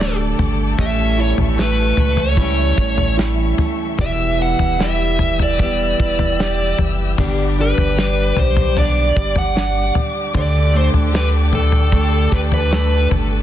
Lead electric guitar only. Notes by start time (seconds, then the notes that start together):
Already playing: D5
0.80 E5
1.21 C#5
1.61 B4
2.20 C#5
4.01 E5
4.42 F#5
4.83 E5
5.42 D5
7.61 B4
8.39 C5
8.79 D5
9.38 F#5
10.37 D5
10.77 C5
11.16 B4
11.55 A4
12.34 B4
12.54 B4